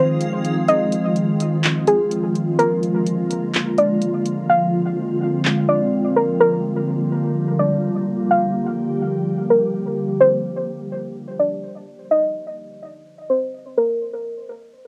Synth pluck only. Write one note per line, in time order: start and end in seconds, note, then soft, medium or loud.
0.00 0.20 C5 medium
0.68 1.83 D#5 loud
1.87 2.55 G#4 medium
2.58 3.74 A#4 loud
3.78 4.01 D5 medium
4.50 5.65 F5 loud
5.69 6.13 D5 medium
6.16 6.39 A#4 medium
6.41 7.55 A#4 loud
7.59 7.82 D5 medium
8.31 9.45 F5 loud
9.50 10.17 A#4 medium
10.20 11.36 C5 loud
11.39 11.62 D5 medium
12.11 13.26 D#5 loud
13.30 13.75 C5 medium
13.78 14.00 A#4 medium